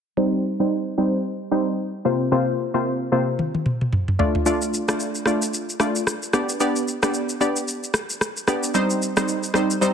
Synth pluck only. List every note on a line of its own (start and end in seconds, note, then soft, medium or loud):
0.17 0.56 G3 medium
0.17 0.56 C4 medium
0.17 0.56 D#4 medium
0.17 0.56 C5 loud
0.60 0.79 G3 medium
0.60 0.79 C4 medium
0.60 0.79 D#4 medium
0.60 0.79 C5 medium
0.98 1.19 G3 medium
0.98 1.19 C4 medium
0.98 1.19 D#4 medium
0.98 1.19 C5 medium
1.51 1.73 G3 medium
1.51 1.73 C4 medium
1.51 1.73 D#4 medium
1.51 1.73 C5 medium
2.05 2.30 C3 medium
2.05 2.30 A#3 medium
2.05 2.30 C4 medium
2.05 2.30 F4 medium
2.05 2.30 C5 medium
2.32 2.53 C3 medium
2.32 2.53 A#3 medium
2.32 2.53 C4 medium
2.32 2.53 F4 medium
2.32 2.53 C5 loud
2.74 2.93 C3 medium
2.74 2.93 A#3 medium
2.74 2.93 C4 medium
2.74 2.93 F4 medium
2.74 2.93 C5 medium
3.12 3.33 C3 medium
3.12 3.33 A#3 medium
3.12 3.33 C4 medium
3.12 3.33 F4 medium
3.12 3.33 C5 medium
4.19 4.40 A3 medium
4.19 4.40 D4 medium
4.19 4.41 F4 medium
4.19 4.41 D5 medium
4.46 4.85 A3 medium
4.46 4.85 D4 medium
4.46 4.85 F4 medium
4.46 4.85 D5 loud
4.88 5.07 A3 medium
4.88 5.07 D4 medium
4.88 5.08 F4 medium
4.88 5.08 D5 medium
5.26 5.48 A3 medium
5.26 5.48 D4 medium
5.26 5.48 F4 medium
5.26 5.48 D5 medium
5.80 6.01 A3 medium
5.80 6.01 D4 medium
5.80 6.01 F4 medium
5.80 6.01 D5 medium
6.34 6.59 B3 medium
6.34 6.59 D4 medium
6.34 6.59 G4 medium
6.34 6.59 D5 medium
6.60 6.82 B3 medium
6.60 6.82 D4 medium
6.60 6.82 G4 medium
6.60 6.82 D5 loud
7.02 7.22 B3 medium
7.02 7.22 D4 medium
7.02 7.22 G4 medium
7.02 7.22 D5 medium
7.40 7.62 B3 medium
7.40 7.62 D4 medium
7.40 7.62 G4 medium
7.40 7.62 D5 medium
8.48 8.69 B3 medium
8.48 8.69 D4 medium
8.48 8.69 G4 medium
8.48 8.69 D5 medium
8.74 9.13 G3 medium
8.74 9.13 C4 medium
8.74 9.13 D#4 medium
8.74 9.13 C5 loud
9.17 9.36 G3 medium
9.17 9.36 C4 medium
9.17 9.36 D#4 medium
9.17 9.36 C5 medium
9.55 9.76 G3 medium
9.55 9.76 C4 medium
9.55 9.76 D#4 medium
9.55 9.76 C5 medium
9.81 9.93 G3 medium
9.81 9.93 C4 medium
9.81 9.93 D#4 medium
9.81 9.93 C5 loud